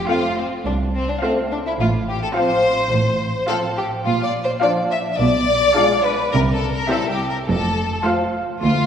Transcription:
0.08 0.24 A3 soft
0.08 0.51 A3 soft
0.08 0.25 C4 soft
0.08 0.51 F4 medium
0.08 0.37 F4 medium
0.08 0.51 F5 soft
0.38 0.46 C4 medium
0.65 1.10 C2 medium
0.65 1.11 C2 medium
0.65 0.74 D4 medium
0.94 1.08 C4 medium
1.10 1.23 D4 medium
1.22 1.64 A3 soft
1.22 1.38 A3 soft
1.22 1.38 C4 soft
1.22 1.31 C4 medium
1.22 1.64 F4 soft
1.22 1.65 F5 soft
1.52 1.57 D4 medium
1.67 1.72 E4 medium
1.79 2.23 A1 medium
1.79 2.24 A2 medium
1.79 1.89 F4 medium
2.08 2.22 G4 medium
2.22 2.28 A4 medium
2.34 2.51 F3 soft
2.34 2.77 C4 medium
2.34 2.52 C4 soft
2.34 2.77 F4 medium
2.34 3.47 C5 medium
2.34 2.78 F5 soft
2.91 3.37 A1 medium
2.91 3.37 A2 medium
3.48 3.64 F3 soft
3.48 3.64 C4 soft
3.48 3.91 C4 medium
3.48 3.91 F4 medium
3.48 3.56 A4 medium
3.48 3.91 F5 medium
3.78 3.86 G4 medium
4.05 4.51 A#1 medium
4.05 4.51 A#2 medium
4.05 4.24 F4 medium
4.24 4.32 D5 medium
4.44 4.51 C5 medium
4.62 4.79 F3 soft
4.62 5.05 D4 medium
4.62 4.79 D4 soft
4.62 5.05 F4 medium
4.62 4.71 D5 medium
4.62 5.05 F5 soft
4.91 4.99 E5 medium
5.13 5.20 E5 medium
5.19 5.64 B1 medium
5.19 5.64 B2 medium
5.19 6.04 D5 medium
5.75 5.92 G#3 soft
5.75 6.18 D4 medium
5.75 5.92 F4 soft
5.75 6.18 G#4 medium
5.75 6.18 F5 medium
6.04 6.33 B4 medium
6.32 6.78 C2 medium
6.32 6.78 C3 medium
6.32 6.40 A#4 medium
6.52 6.71 A4 medium
6.72 6.90 A#4 medium
6.89 7.06 G3 soft
6.89 7.32 C4 medium
6.89 7.06 E4 soft
6.89 7.33 G4 soft
6.89 7.10 A4 medium
6.89 7.33 E5 medium
7.11 7.29 G4 medium
7.29 7.37 A#4 medium
7.48 7.94 F1 medium
7.48 7.94 F2 medium
7.48 8.04 A4 medium
8.05 8.22 F3 soft
8.05 8.48 A3 medium
8.05 8.48 F4 medium
8.05 8.22 F4 soft
8.05 8.49 F5 medium
8.63 8.86 D2 medium
8.63 8.86 F4 medium

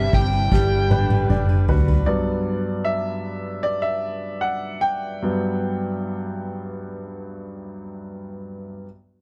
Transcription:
0.00 0.50 C3 medium
0.00 0.48 G3 medium
0.00 0.52 G3 medium
0.00 0.60 C4 medium
0.00 2.03 D4 medium
0.00 0.13 E4 medium
0.00 0.48 E4 medium
0.00 0.13 G4 medium
0.00 0.32 B4 medium
0.00 0.16 E5 loud
0.13 0.49 G1 loud
0.13 0.60 E4 medium
0.13 0.51 G4 medium
0.13 1.65 G5 loud
0.13 kick medium
0.33 0.52 B4 medium
0.51 1.25 G1 loud
0.51 2.05 D3 medium
0.51 2.05 G3 medium
0.51 2.65 G3 medium
0.51 2.03 G3 medium
0.51 1.10 B4 medium
0.51 kick medium
0.51 snare soft
0.90 1.29 D4 medium
0.90 1.67 B4 medium
0.90 high tom medium
1.10 1.49 B4 medium
1.10 high tom medium
1.29 1.65 F#1 medium
1.29 2.65 D4 medium
1.29 2.05 D5 medium
1.29 mid tom medium
1.49 1.88 B4 medium
1.68 2.04 D2 medium
1.68 2.65 F#4 medium
1.68 2.06 B4 medium
1.68 floor tom loud
1.88 2.65 B4 medium
1.88 floor tom medium
2.06 2.58 G2 soft
2.06 2.59 F#3 soft
2.06 2.59 B3 soft
2.06 2.87 D5 medium
2.85 3.65 E5 medium
3.63 3.83 D5 medium
3.82 4.43 E5 medium
4.41 4.82 F#5 medium
4.81 7.82 G5 medium
5.22 5.78 G2 soft
5.22 5.78 F#3 soft
5.22 5.78 B3 soft

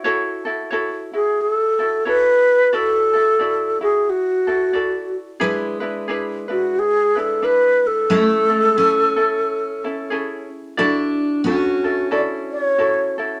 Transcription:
0.04 0.45 E4 medium
0.04 0.45 F#4 medium
0.04 0.44 A4 medium
0.04 0.45 C#5 medium
0.45 0.71 E4 soft
0.45 0.71 F#4 soft
0.45 0.71 A4 medium
0.71 1.12 E4 medium
0.71 1.12 F#4 medium
0.71 1.13 A4 medium
0.71 1.12 C#5 medium
1.13 1.79 E4 soft
1.13 1.80 F#4 soft
1.13 1.43 G#4 medium
1.41 2.07 A4 medium
1.79 2.05 E4 soft
1.79 2.05 F#4 soft
1.79 2.05 A4 soft
2.05 2.73 E4 medium
2.05 2.72 F#4 medium
2.05 2.73 A4 medium
2.05 2.76 B4 loud
2.05 2.72 C#5 medium
2.73 3.14 E4 medium
2.73 3.13 F#4 medium
2.73 3.12 A4 medium
2.73 3.82 A4 loud
2.73 3.13 D5 medium
3.13 3.39 E4 soft
3.13 3.39 F#4 soft
3.13 3.40 A4 medium
3.39 3.80 E4 medium
3.39 3.81 F#4 medium
3.39 3.81 A4 medium
3.39 3.80 D5 medium
3.81 4.48 E4 soft
3.81 4.48 F#4 soft
3.81 4.11 G#4 medium
4.10 5.16 F#4 medium
4.47 4.73 E4 soft
4.47 4.72 F#4 soft
4.47 4.74 A4 medium
4.73 5.40 E4 medium
4.73 5.40 F#4 medium
4.73 5.41 A4 medium
4.73 5.39 D5 medium
5.40 8.06 G#3 medium
5.40 5.81 D4 medium
5.40 5.80 E4 medium
5.40 5.81 G#4 medium
5.40 5.79 B4 loud
5.80 6.08 D4 soft
5.80 6.08 E4 soft
5.80 6.08 B4 medium
6.08 6.49 D4 medium
6.08 6.48 E4 medium
6.08 6.49 G#4 medium
6.08 6.47 B4 medium
6.48 7.16 D4 soft
6.48 7.16 E4 soft
6.48 6.81 F#4 medium
6.48 7.14 B4 soft
6.79 7.21 G#4 medium
7.15 7.41 D4 soft
7.15 7.42 E4 soft
7.15 7.47 A4 medium
7.15 7.42 B4 soft
7.42 8.10 D4 medium
7.42 8.10 E4 medium
7.42 8.10 B4 medium
7.42 7.88 B4 loud
7.87 10.13 A4 loud
8.10 8.59 A3 medium
8.10 8.50 C#4 medium
8.10 8.50 E4 medium
8.10 8.48 A4 medium
8.50 8.76 C#4 soft
8.50 8.76 E4 soft
8.50 8.76 A4 soft
8.59 8.79 G#3 medium
8.77 9.17 C#4 medium
8.77 10.48 C#4 medium
8.77 9.16 E4 medium
8.77 9.15 A4 medium
9.16 9.85 C#4 soft
9.16 9.84 E4 soft
9.16 9.84 A4 medium
9.84 10.10 C#4 medium
9.84 10.10 E4 soft
9.84 10.10 A4 medium
10.10 10.78 C#4 medium
10.10 10.78 E4 medium
10.10 10.77 G#4 medium
10.10 10.78 A4 medium
10.77 11.44 D4 medium
10.77 11.45 E4 medium
10.77 11.45 F#4 medium
10.77 11.45 A4 medium
10.77 11.45 D5 medium
11.44 13.40 C#4 medium
11.44 11.84 E4 medium
11.44 11.85 F#4 medium
11.44 12.09 F#4 medium
11.44 11.83 A4 medium
11.84 12.11 E4 soft
11.84 12.10 F#4 soft
11.84 12.10 A4 soft
12.11 12.78 E4 medium
12.11 12.78 F#4 medium
12.11 12.78 A4 medium
12.11 12.21 D5 medium
12.52 13.15 C#5 medium
12.78 13.18 E4 medium
12.78 13.19 F#4 medium
12.78 13.17 A4 medium
13.18 13.40 E4 soft
13.18 13.40 F#4 soft
13.18 13.40 A4 soft

